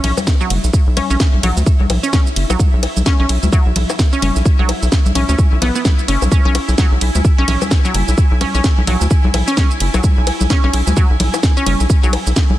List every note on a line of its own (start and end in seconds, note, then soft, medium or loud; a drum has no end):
0.00 0.12 B1 loud
0.00 0.10 C#4 medium
0.00 12.59 E4 medium
0.00 6.34 E5 medium
0.00 closed hi-hat medium
0.00 ride medium
0.00 low conga medium
0.17 high bongo medium
0.17 high conga medium
0.17 shaker soft
0.27 kick loud
0.27 snare loud
0.27 shaker medium
0.41 0.45 F#3 medium
0.41 shaker soft
0.50 0.59 F#1 medium
0.50 closed hi-hat medium
0.50 ride medium
0.50 high conga soft
0.64 0.70 B1 medium
0.64 shaker soft
0.73 kick loud
0.73 shaker medium
0.87 1.00 B1 loud
0.97 1.06 C#4 medium
0.97 closed hi-hat medium
0.97 ride medium
0.97 high bongo medium
0.97 high conga medium
1.10 1.16 B1 loud
1.10 1.15 C#4 medium
1.10 shaker soft
1.20 kick loud
1.20 snare loud
1.20 shaker medium
1.34 1.40 B1 medium
1.34 high conga soft
1.43 1.52 B1 loud
1.43 1.50 F#3 medium
1.43 closed hi-hat loud
1.43 ride medium
1.43 low conga loud
1.57 1.63 D2 loud
1.57 shaker soft
1.66 kick loud
1.66 shaker medium
1.80 1.86 B1 medium
1.80 high conga medium
1.90 1.98 B1 medium
1.90 closed hi-hat loud
1.90 ride medium
1.90 high bongo medium
1.90 low conga medium
2.03 2.10 C#4 medium
2.03 shaker soft
2.13 2.19 C#4 medium
2.13 kick loud
2.13 snare loud
2.13 high conga soft
2.13 shaker medium
2.27 shaker soft
2.36 2.45 F#1 medium
2.36 closed hi-hat loud
2.36 ride medium
2.50 2.56 B1 medium
2.50 2.54 F#3 medium
2.50 high bongo medium
2.50 shaker soft
2.60 kick loud
2.60 high conga medium
2.60 shaker medium
2.73 2.86 B1 loud
2.83 closed hi-hat medium
2.83 ride medium
2.83 high bongo medium
2.97 3.03 B1 loud
2.97 high conga soft
2.97 shaker soft
3.06 3.16 C#4 medium
3.06 kick loud
3.06 snare loud
3.06 shaker soft
3.20 3.26 B1 medium
3.20 3.24 C#4 medium
3.29 3.38 B1 loud
3.29 closed hi-hat loud
3.29 ride medium
3.43 3.49 D2 loud
3.43 high conga medium
3.43 shaker soft
3.53 3.59 F#3 medium
3.53 kick loud
3.53 shaker medium
3.66 3.72 B1 medium
3.76 3.85 B1 medium
3.76 closed hi-hat loud
3.76 ride medium
3.76 high conga soft
3.76 low conga medium
3.90 high bongo medium
3.90 shaker soft
3.99 kick loud
3.99 snare loud
3.99 shaker medium
4.13 4.19 C#4 medium
4.13 shaker soft
4.22 4.31 F#1 medium
4.22 4.29 C#4 medium
4.22 closed hi-hat loud
4.22 ride medium
4.22 high conga medium
4.36 4.42 B1 medium
4.36 shaker soft
4.46 kick loud
4.46 shaker medium
4.59 4.72 B1 loud
4.59 4.64 F#3 medium
4.59 high conga soft
4.69 closed hi-hat loud
4.69 ride medium
4.69 high bongo medium
4.82 4.89 B1 loud
4.82 shaker soft
4.92 kick loud
4.92 snare medium
4.92 shaker soft
5.06 5.12 B1 medium
5.06 high conga medium
5.06 shaker soft
5.15 5.24 B1 medium
5.15 5.25 C#4 medium
5.15 closed hi-hat loud
5.15 ride medium
5.15 low conga medium
5.29 5.35 D2 loud
5.29 5.33 C#4 medium
5.29 shaker soft
5.39 kick loud
5.39 high conga soft
5.39 shaker medium
5.52 5.58 B1 medium
5.62 5.70 B1 loud
5.62 5.71 B3 medium
5.62 closed hi-hat loud
5.62 ride medium
5.62 high bongo medium
5.62 low conga medium
5.75 5.78 B3 medium
5.75 shaker soft
5.85 kick loud
5.85 snare medium
5.85 high conga medium
5.85 shaker medium
5.99 shaker soft
6.08 6.17 F#1 medium
6.08 6.18 C#4 medium
6.08 closed hi-hat medium
6.08 ride medium
6.22 6.28 B1 medium
6.22 high bongo medium
6.22 high conga soft
6.22 shaker soft
6.32 6.41 C#4 medium
6.32 12.59 G#5 medium
6.32 kick loud
6.32 high conga soft
6.32 shaker medium
6.45 6.58 B1 loud
6.45 6.50 C#4 medium
6.55 closed hi-hat loud
6.55 ride medium
6.55 high bongo medium
6.68 6.75 B1 loud
6.68 shaker soft
6.78 6.84 F#3 medium
6.78 kick loud
6.78 snare medium
6.78 high conga medium
6.78 shaker soft
6.92 6.98 B1 medium
7.01 7.10 B1 medium
7.01 closed hi-hat medium
7.01 ride medium
7.15 7.21 D2 loud
7.15 high conga soft
7.15 shaker soft
7.25 kick loud
7.25 shaker medium
7.38 7.44 B1 medium
7.38 7.45 C#4 medium
7.48 7.57 B1 loud
7.48 7.54 C#4 medium
7.48 closed hi-hat loud
7.48 ride medium
7.48 low conga medium
7.62 high bongo medium
7.62 high conga medium
7.62 shaker soft
7.71 kick loud
7.71 snare medium
7.71 shaker medium
7.85 7.89 F#3 medium
7.85 shaker soft
7.94 8.03 F#1 medium
7.94 closed hi-hat medium
7.94 ride medium
7.94 high conga soft
8.08 8.14 B1 medium
8.08 shaker soft
8.18 kick loud
8.18 shaker medium
8.31 8.45 B1 loud
8.41 8.50 C#4 medium
8.41 closed hi-hat medium
8.41 ride medium
8.41 high bongo medium
8.41 high conga medium
8.55 8.61 B1 medium
8.55 8.59 C#4 medium
8.55 shaker soft
8.64 kick loud
8.64 snare medium
8.64 shaker medium
8.78 8.84 B1 medium
8.78 high conga soft
8.87 8.96 B1 medium
8.87 8.94 F#3 medium
8.87 closed hi-hat medium
8.87 ride medium
8.87 low conga medium
9.01 9.07 D2 loud
9.01 shaker soft
9.11 kick loud
9.11 shaker medium
9.24 9.30 B1 medium
9.24 high conga medium
9.34 9.43 B1 medium
9.34 closed hi-hat loud
9.34 ride medium
9.34 high bongo medium
9.34 low conga medium
9.48 9.54 C#4 medium
9.48 shaker soft
9.57 9.64 C#4 medium
9.57 kick loud
9.57 snare medium
9.57 high conga soft
9.57 shaker medium
9.71 shaker soft
9.80 9.89 F#1 medium
9.80 closed hi-hat medium
9.80 ride medium
9.94 10.00 B1 medium
9.94 9.99 F#3 medium
9.94 high bongo medium
9.94 shaker soft
10.04 kick loud
10.04 high conga medium
10.04 shaker medium
10.17 10.31 B1 loud
10.27 closed hi-hat medium
10.27 ride medium
10.27 high bongo medium
10.41 10.47 B1 loud
10.41 high conga soft
10.41 shaker soft
10.50 10.60 C#4 medium
10.50 kick loud
10.50 snare medium
10.50 shaker medium
10.64 10.70 B1 loud
10.64 10.68 C#4 medium
10.73 10.82 B1 loud
10.73 closed hi-hat medium
10.73 ride medium
10.87 10.93 D2 loud
10.87 high conga medium
10.87 shaker soft
10.97 11.03 F#3 medium
10.97 kick loud
10.97 shaker medium
11.10 11.16 B1 medium
11.20 11.29 B1 medium
11.20 closed hi-hat medium
11.20 ride medium
11.20 high conga soft
11.20 low conga medium
11.34 high bongo medium
11.34 shaker soft
11.43 kick loud
11.43 snare medium
11.43 shaker medium
11.57 11.64 C#4 medium
11.57 shaker soft
11.66 11.75 F#1 medium
11.66 11.73 C#4 medium
11.66 closed hi-hat medium
11.66 ride medium
11.66 high conga medium
11.80 11.86 B1 medium
11.80 shaker soft
11.90 kick loud
11.90 shaker medium
12.03 12.17 B1 loud
12.03 12.08 F#3 medium
12.03 high conga soft
12.03 shaker soft
12.13 closed hi-hat medium
12.13 ride medium
12.13 high bongo medium
12.27 12.33 B1 loud
12.27 shaker soft
12.36 kick loud
12.36 snare medium
12.36 shaker medium
12.50 12.56 B1 medium
12.50 high conga medium